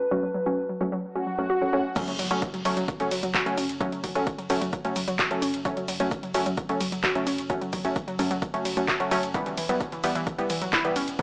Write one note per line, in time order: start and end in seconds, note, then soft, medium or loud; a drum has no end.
0.00 1.96 F#4 medium
0.00 1.96 A4 medium
0.00 1.96 B4 medium
0.00 1.96 A5 medium
0.11 0.18 F#3 medium
0.11 0.30 F#3 medium
0.11 0.30 A3 medium
0.11 0.30 C#4 medium
0.23 0.27 F#3 medium
0.34 0.39 F#3 medium
0.46 0.49 F#3 medium
0.46 0.58 F#3 medium
0.46 0.58 A3 medium
0.46 0.58 C#4 medium
0.69 0.72 F#3 medium
0.81 0.87 F#3 medium
0.81 0.99 F#3 medium
0.81 0.99 A3 medium
0.81 0.99 C#4 medium
0.92 0.95 F#3 loud
1.04 swell medium
1.15 1.27 F#3 medium
1.15 1.27 A3 medium
1.15 1.27 C#4 medium
1.27 1.31 F#3 medium
1.38 1.41 F#3 medium
1.38 1.57 F#3 medium
1.38 1.57 A3 medium
1.38 1.57 C#4 medium
1.50 1.54 F#4 loud
1.62 1.71 F#3 medium
1.62 1.71 A3 medium
1.62 1.71 C#4 medium
1.73 1.85 F#3 loud
1.73 1.85 A3 medium
1.73 1.79 C#4 medium
1.73 1.85 C#4 loud
1.96 2.03 F#3 medium
1.96 2.15 F#3 medium
1.96 2.15 A3 medium
1.96 2.15 C#4 medium
1.96 kick loud
1.96 closed hi-hat loud
1.96 crash loud
1.96 impact medium
1.96 shaker soft
2.08 2.19 F#1 medium
2.08 2.12 F#3 medium
2.08 closed hi-hat medium
2.08 shaker soft
2.19 2.30 F#1 loud
2.19 2.23 F#3 medium
2.19 open hi-hat loud
2.19 ride medium
2.19 shaker medium
2.31 2.42 F#1 medium
2.31 2.33 F#3 medium
2.31 2.42 F#3 medium
2.31 2.42 A3 medium
2.31 2.42 C#4 medium
2.31 closed hi-hat medium
2.31 shaker soft
2.42 kick loud
2.42 closed hi-hat loud
2.42 shaker soft
2.54 2.65 F#1 medium
2.54 2.56 F#3 medium
2.54 closed hi-hat medium
2.54 shaker soft
2.65 2.76 F#1 loud
2.65 2.84 F#3 medium
2.65 2.72 F#3 medium
2.65 2.84 A3 medium
2.65 2.84 C#4 medium
2.65 open hi-hat medium
2.65 ride medium
2.65 shaker medium
2.77 2.88 F#1 medium
2.77 2.79 F#3 loud
2.77 closed hi-hat medium
2.77 shaker soft
2.88 kick loud
2.88 closed hi-hat loud
2.88 shaker soft
3.00 3.11 F#1 medium
3.00 3.12 F#3 medium
3.00 3.12 A3 medium
3.00 3.12 C#4 medium
3.00 closed hi-hat medium
3.00 shaker soft
3.11 3.22 F#1 loud
3.11 3.16 F#3 medium
3.11 open hi-hat loud
3.11 ride medium
3.11 shaker medium
3.23 3.34 F#1 medium
3.23 3.26 F#3 medium
3.23 closed hi-hat medium
3.23 shaker soft
3.34 3.39 F#4 loud
3.34 kick loud
3.34 clap loud
3.34 closed hi-hat loud
3.34 shaker soft
3.46 3.57 F#1 medium
3.46 3.58 F#3 medium
3.46 3.58 A3 medium
3.46 3.58 C#4 medium
3.46 closed hi-hat medium
3.46 shaker soft
3.57 3.69 F#1 loud
3.57 3.64 C#4 medium
3.57 open hi-hat medium
3.57 ride medium
3.57 shaker medium
3.69 3.80 F#1 medium
3.69 closed hi-hat medium
3.69 shaker soft
3.80 3.87 F#3 medium
3.80 3.99 F#3 medium
3.80 3.99 A3 medium
3.80 3.99 C#4 medium
3.80 kick loud
3.80 closed hi-hat loud
3.80 shaker soft
3.92 4.03 F#1 medium
3.92 3.97 F#3 medium
3.92 closed hi-hat medium
3.92 shaker soft
4.04 4.15 F#1 loud
4.04 4.08 F#3 medium
4.04 kick medium
4.04 open hi-hat loud
4.04 ride medium
4.04 shaker medium
4.15 4.27 F#1 medium
4.15 4.18 F#3 medium
4.15 4.27 F#3 medium
4.15 4.27 A3 medium
4.15 4.27 C#4 medium
4.15 closed hi-hat medium
4.15 shaker soft
4.27 kick loud
4.27 closed hi-hat loud
4.27 shaker soft
4.38 4.49 F#1 medium
4.38 4.41 F#3 medium
4.38 closed hi-hat medium
4.38 shaker soft
4.50 4.61 F#1 loud
4.50 4.56 F#3 medium
4.50 4.69 F#3 medium
4.50 4.69 A3 medium
4.50 4.69 C#4 medium
4.50 open hi-hat loud
4.50 ride medium
4.50 shaker medium
4.61 4.73 F#1 medium
4.61 4.64 F#3 loud
4.61 closed hi-hat medium
4.61 shaker soft
4.73 kick loud
4.73 closed hi-hat loud
4.73 shaker soft
4.85 4.95 F#1 medium
4.85 4.96 F#3 medium
4.85 4.96 A3 medium
4.85 4.96 C#4 medium
4.85 closed hi-hat medium
4.85 shaker soft
4.96 5.07 F#1 loud
4.96 5.00 F#3 medium
4.96 open hi-hat loud
4.96 ride medium
4.96 shaker medium
5.08 5.19 F#1 medium
5.08 5.10 F#3 medium
5.08 closed hi-hat medium
5.08 shaker soft
5.19 5.23 F#4 loud
5.19 kick loud
5.19 clap loud
5.19 closed hi-hat loud
5.19 shaker soft
5.31 5.42 F#1 medium
5.31 5.42 F#3 medium
5.31 5.42 A3 medium
5.31 5.42 C#4 medium
5.31 closed hi-hat medium
5.31 shaker soft
5.42 5.53 F#1 loud
5.42 5.49 C#4 medium
5.42 open hi-hat medium
5.42 ride medium
5.42 shaker medium
5.54 5.65 F#1 medium
5.54 closed hi-hat medium
5.54 shaker soft
5.65 5.72 F#3 medium
5.65 5.84 F#3 medium
5.65 5.84 A3 medium
5.65 5.84 C#4 loud
5.65 kick loud
5.65 closed hi-hat loud
5.65 shaker soft
5.77 5.88 F#1 medium
5.77 5.81 F#3 medium
5.77 closed hi-hat medium
5.77 shaker soft
5.88 5.99 F#1 loud
5.88 5.93 F#3 medium
5.88 open hi-hat loud
5.88 ride medium
5.88 shaker medium
6.00 6.11 F#1 medium
6.00 6.02 F#3 medium
6.00 6.12 F#3 medium
6.00 6.12 A3 medium
6.00 6.12 C#4 medium
6.00 closed hi-hat medium
6.00 shaker soft
6.11 kick loud
6.11 closed hi-hat loud
6.11 shaker soft
6.23 6.34 F#1 medium
6.23 6.26 F#3 medium
6.23 closed hi-hat medium
6.23 shaker soft
6.34 6.46 F#1 loud
6.34 6.41 F#3 medium
6.34 6.53 F#3 medium
6.34 6.53 A3 medium
6.34 6.53 C#4 medium
6.34 open hi-hat loud
6.34 ride medium
6.34 shaker medium
6.46 6.57 F#1 medium
6.46 6.49 F#3 loud
6.46 closed hi-hat medium
6.46 shaker soft
6.57 kick loud
6.57 closed hi-hat medium
6.57 shaker soft
6.69 6.80 F#1 medium
6.69 6.81 F#3 medium
6.69 6.81 A3 medium
6.69 6.81 C#4 medium
6.69 closed hi-hat medium
6.69 shaker soft
6.81 6.92 F#1 loud
6.81 6.85 F#3 medium
6.81 open hi-hat loud
6.81 ride medium
6.81 shaker medium
6.92 7.03 F#1 medium
6.92 6.95 F#3 medium
6.92 closed hi-hat medium
6.92 shaker soft
7.04 7.08 F#4 loud
7.04 kick loud
7.04 clap loud
7.04 closed hi-hat loud
7.04 shaker soft
7.15 7.26 F#1 medium
7.15 7.27 F#3 medium
7.15 7.27 A3 medium
7.15 7.27 C#4 medium
7.15 closed hi-hat medium
7.15 shaker soft
7.27 7.38 F#1 loud
7.27 7.33 C#4 medium
7.27 open hi-hat loud
7.27 ride medium
7.27 shaker medium
7.38 7.50 F#1 medium
7.38 closed hi-hat medium
7.38 shaker soft
7.50 7.56 F#3 medium
7.50 7.69 F#3 medium
7.50 7.69 A3 medium
7.50 7.69 C#4 loud
7.50 kick loud
7.50 closed hi-hat medium
7.50 shaker soft
7.61 7.72 F#1 medium
7.61 7.66 F#3 medium
7.61 closed hi-hat medium
7.61 shaker soft
7.73 7.84 F#1 loud
7.73 7.77 F#3 medium
7.73 kick medium
7.73 open hi-hat loud
7.73 ride medium
7.73 shaker medium
7.84 7.96 F#1 medium
7.84 7.87 F#3 medium
7.84 7.96 F#3 medium
7.84 7.96 A3 medium
7.84 7.96 C#4 medium
7.84 closed hi-hat medium
7.84 shaker soft
7.96 kick loud
7.96 closed hi-hat medium
7.96 shaker soft
8.08 8.18 F#1 medium
8.08 8.10 F#3 medium
8.08 closed hi-hat medium
8.08 shaker soft
8.19 8.30 F#1 loud
8.19 8.26 F#3 medium
8.19 8.38 F#3 medium
8.19 8.38 A3 medium
8.19 8.38 C#4 loud
8.19 open hi-hat loud
8.19 ride medium
8.19 shaker medium
8.31 8.42 F#1 medium
8.31 8.33 F#3 loud
8.31 closed hi-hat medium
8.31 shaker soft
8.42 kick loud
8.42 closed hi-hat medium
8.42 shaker soft
8.54 8.65 F#1 medium
8.54 8.65 F#3 medium
8.54 8.65 A3 medium
8.54 8.65 C#4 medium
8.54 closed hi-hat medium
8.54 shaker soft
8.65 8.76 F#1 loud
8.65 8.70 F#3 medium
8.65 open hi-hat loud
8.65 ride medium
8.65 shaker medium
8.77 8.88 F#1 medium
8.77 8.79 F#3 medium
8.77 8.96 F#3 medium
8.77 8.96 A3 medium
8.77 8.96 C#4 medium
8.77 closed hi-hat medium
8.77 shaker soft
8.88 8.93 F#4 loud
8.88 kick loud
8.88 clap loud
8.88 closed hi-hat medium
8.88 shaker soft
9.00 9.11 F#1 medium
9.00 9.10 F#3 medium
9.00 9.10 A3 medium
9.00 9.10 C#4 medium
9.00 closed hi-hat medium
9.00 shaker soft
9.11 9.22 F#1 loud
9.11 9.23 F#3 loud
9.11 9.23 A3 medium
9.11 9.18 C#4 medium
9.11 9.23 C#4 loud
9.11 open hi-hat medium
9.11 ride medium
9.11 shaker medium
9.23 9.34 F#1 medium
9.23 closed hi-hat medium
9.23 shaker soft
9.34 9.41 E3 medium
9.34 9.53 E3 medium
9.34 9.53 G3 medium
9.34 9.53 B3 medium
9.34 kick loud
9.34 closed hi-hat medium
9.34 shaker soft
9.46 9.57 E1 medium
9.46 9.50 E3 medium
9.46 closed hi-hat medium
9.46 shaker soft
9.57 9.69 E1 loud
9.57 9.62 E3 medium
9.57 open hi-hat loud
9.57 ride medium
9.57 shaker medium
9.69 9.80 E1 medium
9.69 9.81 E3 medium
9.69 9.72 F#3 medium
9.69 9.81 G3 medium
9.69 9.81 B3 medium
9.69 closed hi-hat medium
9.69 shaker soft
9.81 kick loud
9.81 closed hi-hat loud
9.81 shaker soft
9.92 10.03 E1 medium
9.92 9.95 E3 medium
9.92 closed hi-hat medium
9.92 shaker soft
10.04 10.15 E1 loud
10.04 10.22 E3 medium
10.04 10.10 E3 medium
10.04 10.22 G3 medium
10.04 10.22 B3 medium
10.04 open hi-hat medium
10.04 ride medium
10.04 shaker medium
10.15 10.27 E1 medium
10.15 10.18 E3 loud
10.15 closed hi-hat medium
10.15 shaker soft
10.27 kick loud
10.27 closed hi-hat medium
10.27 shaker soft
10.38 10.49 E1 medium
10.38 10.50 E3 medium
10.38 10.50 G3 medium
10.38 10.50 B3 medium
10.38 closed hi-hat medium
10.38 shaker soft
10.50 10.61 E1 loud
10.50 10.54 E3 medium
10.50 open hi-hat loud
10.50 ride medium
10.50 shaker medium
10.62 10.73 E1 medium
10.62 10.64 F#3 medium
10.62 closed hi-hat medium
10.62 shaker soft
10.73 10.77 E4 loud
10.73 kick loud
10.73 clap loud
10.73 closed hi-hat medium
10.73 shaker soft
10.85 10.95 E1 medium
10.85 10.96 E3 medium
10.85 10.96 G3 medium
10.85 10.96 B3 medium
10.85 closed hi-hat medium
10.85 shaker soft
10.96 11.07 E1 loud
10.96 11.03 C#4 medium
10.96 open hi-hat medium
10.96 ride medium
10.96 shaker medium
11.08 11.19 E1 medium
11.08 closed hi-hat soft
11.08 shaker soft
11.19 11.22 E3 medium
11.19 11.22 G3 medium
11.19 11.22 B3 loud
11.19 kick loud
11.19 closed hi-hat medium
11.19 shaker soft